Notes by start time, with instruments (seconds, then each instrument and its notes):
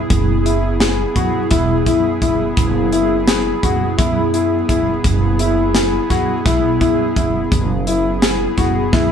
0.10 upright bass F#1, analog synth pad B3 E4 G#4, kick, closed hi-hat
0.46 grand piano E4, closed hi-hat
0.80 analog synth pad B3 E4 G#4, grand piano G#4, snare, closed hi-hat
1.16 upright bass F#2, grand piano F#4, kick, closed hi-hat
1.51 upright bass E1, analog synth pad B3 E4 G#4, grand piano E4, kick, snare, closed hi-hat
1.86 upright bass F#2, grand piano E4, kick, closed hi-hat
2.21 upright bass F#1, analog synth pad B3 E4 G#4, grand piano E4, kick, closed hi-hat
2.57 upright bass F#1, kick, closed hi-hat
2.91 analog synth pad B3 E4 G#4, grand piano E4, closed hi-hat
3.28 grand piano G#4, snare, closed hi-hat
3.63 upright bass F#1, analog synth pad B3 E4 G#4, grand piano F#4, kick, closed hi-hat
3.98 upright bass F#2, grand piano E4, kick, closed hi-hat
4.33 analog synth pad B3 E4 G#4, grand piano E4, closed hi-hat
4.68 upright bass F#1, grand piano E4, kick, closed hi-hat
5.03 upright bass F#1, analog synth pad B3 E4 G#4, kick, closed hi-hat
5.39 grand piano E4, closed hi-hat
5.75 analog synth pad B3 E4 G#4, grand piano G#4, snare, closed hi-hat
6.10 upright bass F#2, grand piano F#4, kick, snare, closed hi-hat
6.45 upright bass B1, analog synth pad B3 E4 G#4, grand piano E4, kick, snare, closed hi-hat
6.81 upright bass F#2, grand piano E4, kick, closed hi-hat
7.16 upright bass F#1, analog synth pad B3 E4 G#4, grand piano E4, kick, closed hi-hat
7.52 upright bass F#1, kick, closed hi-hat
7.87 analog synth pad B3 E4 G#4, grand piano E4, closed hi-hat
8.22 grand piano G#4, snare, closed hi-hat
8.57 upright bass F#1, analog synth pad B3 E4 G#4, grand piano F#4, kick, snare, closed hi-hat
8.93 upright bass F#2, grand piano E4, kick, snare